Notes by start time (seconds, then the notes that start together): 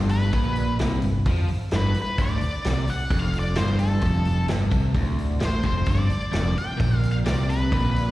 Already playing: G1 G2
0.09 B4, open hi-hat
0.33 A#1 A#2, kick, open hi-hat
0.56 open hi-hat
0.79 C2 C3, snare, open hi-hat
1.02 G1 G2, open hi-hat
1.26 F2 F3, kick, open hi-hat
1.48 muted overdriven electric guitar stroke, muted picked electric bass stroke, open hi-hat
1.71 G1 G2, snare, open hi-hat
1.76 B4
1.94 muted overdriven electric guitar stroke, muted picked electric bass stroke, open hi-hat
2.02 B4
2.18 D1 D2 D5, kick, open hi-hat
2.41 muted overdriven electric guitar stroke, muted picked electric bass stroke, open hi-hat
2.64 C2 C3, snare, open hi-hat
2.87 F#5, muted overdriven electric guitar stroke, muted picked electric bass stroke, open hi-hat
3.10 F1 F2, kick, open hi-hat
3.19 F5
3.33 open hi-hat
3.39 D5
3.55 G1 G2 C5, snare, open hi-hat
3.79 A4, open hi-hat
4.01 F1 F2, kick, open hi-hat
4.25 open hi-hat
4.48 G1 G2, snare, open hi-hat
4.71 C2 C3, kick, open hi-hat
4.94 D1 D2, kick, open hi-hat
5.18 open hi-hat
5.40 A1 A2, snare, open hi-hat
5.45 C5
5.63 F1 F2 C5, kick, open hi-hat
5.86 G1 G2, kick, open hi-hat
5.91 D5
6.10 muted overdriven electric guitar stroke, muted picked electric bass stroke, open hi-hat
6.31 F1 F2, snare, open hi-hat
6.56 G5, muted overdriven electric guitar stroke, muted picked electric bass stroke, open hi-hat
6.77 A#1 A#2, kick, open hi-hat
7.03 open hi-hat
7.12 F5
7.25 C2 C3 D5, snare, open hi-hat
7.49 B4, open hi-hat
7.72 A#1 A#2, kick, open hi-hat
7.96 open hi-hat